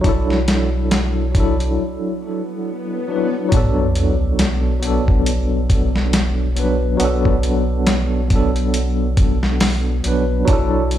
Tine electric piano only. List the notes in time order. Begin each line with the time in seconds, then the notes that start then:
0.01 F#3 D4
0.06 E4 A4
1.32 F#3 D4
1.37 E4 A4
3.08 F#3 D4 E4
3.12 B4
3.49 F#3 B3
3.54 D4 A4
4.79 F#3 B3
4.85 D4 A4
6.56 F#3 B3 D4 B4
6.97 F#3 B3
7.02 D4 A4
8.28 F#3 B3
8.33 D4 A4
10.04 F#3 B3 D4
10.08 B4
10.45 F#3 D4
10.50 E4 A4